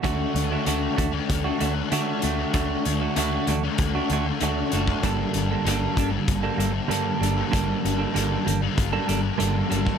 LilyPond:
<<
  \new Staff \with { instrumentName = "Clean electric guitar" } { \time 4/4 \key d \major \tempo 4 = 96 <d a d' fis'>8. <a d' fis'>16 <d a d' fis'>8 <d a d' fis'>8. <a d' fis'>16 <d a d' fis'>8 <d a d' fis'>8 <d a d' fis'>8 | <d a d' fis'>8. <a d' fis'>16 <d a d' fis'>8 <d a d' fis'>8. <a d' fis'>16 <d a d' fis'>8 <d a d' fis'>8 <d a d' fis'>8 | <g, d g bes d' a'>8. <g bes d' a'>16 <g, d g bes d' a'>8 <g bes d' a'>8. <g bes d' a'>16 <g bes d' a'>8 <g, d g bes d' a'>8 <g bes d' a'>8 | <g, d g bes d' a'>8. <g bes d' a'>16 <g, d g bes d' a'>8 <g bes d' a'>8. <g bes d' a'>16 <g bes d' a'>8 <g, d g bes d' a'>8 <g bes d' a'>8 | }
  \new Staff \with { instrumentName = "Distorted electric guitar" } { \clef bass \time 4/4 \key d \major <d a d'>8 <d a d'>8 <d a d'>8. <a d'>8 <a d'>16 <d a d'>8 <d a d'>16 <a d'>16 <d a d'>16 <a d'>16 | <d a d'>8 <d a d'>8 <d a d'>8. <a d'>8 <a d'>16 <d a d'>8 <d a d'>16 <a d'>16 <d a d'>16 <a d'>16 | <g, d g>8 <g, d g>8 <g, d g>8. <d g>8 <d g>16 <g, d g>8 <g, d g>16 <d g>16 <g, d g>16 <d g>16 | <g, d g>8 <g, d g>8 <g, d g>8. <d g>8 <d g>16 <g, d g>8 <g, d g>16 <d g>16 <g, d g>16 <d g>16 | }
  \new Staff \with { instrumentName = "Fingered electric bass" } { \clef bass \time 4/4 \key d \major d,8 d,8 d,8 d,8 d,8 d,8 d8 d,8 | d,8 d,8 d,8 d,8 d,8 d,8 d,8 fis,,8 | g,,8 g,,8 g,,8 g,,8 g,,8 g,,8 g,8 g,,8 | g,,8 g,,8 g,,8 g,,8 g,,8 g,,8 g,,8 g,,8 | }
  \new DrumStaff \with { instrumentName = "Drums" } \drummode { \time 4/4 <hh bd>8 hh8 hh8 <hh bd>8 <hh bd>8 hh8 hh8 hh8 | <hh bd>8 hh8 hh8 hh8 <hh bd>8 hh8 hh8 hh16 bd16 | <hh bd>8 hh8 hh8 <hh bd>8 <hh bd>8 hh8 hh8 hh8 | <hh bd>8 hh8 hh8 hh8 <hh bd>8 hh8 hh8 hh16 bd16 | }
>>